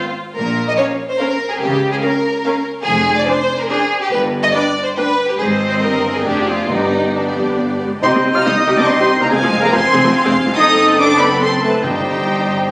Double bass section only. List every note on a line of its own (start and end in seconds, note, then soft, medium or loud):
0.37 0.72 A#1 medium
1.60 1.95 C#2 medium
2.85 3.20 F1 medium
4.12 4.47 G1 medium
5.39 5.79 G#1 medium
5.81 6.25 G1 medium
6.25 6.70 F1 medium
6.69 7.80 G1 medium
8.02 8.06 C2 medium
8.13 8.17 C2 medium
8.24 8.29 C2 medium
8.35 8.39 C2 medium
8.46 8.50 C2 medium
8.67 8.71 C2 medium
8.78 8.82 C2 medium
8.99 9.03 C2 medium
9.21 9.25 C2 medium
9.32 9.36 F1 medium
9.42 9.46 F1 medium
9.53 9.57 F1 medium
9.63 9.67 F1 loud
9.74 9.78 F1 medium
9.94 9.98 F1 loud
10.05 10.09 F1 medium
10.26 10.30 F1 loud
10.46 10.51 F1 medium
10.57 11.80 F#1 medium
11.84 12.71 G1 medium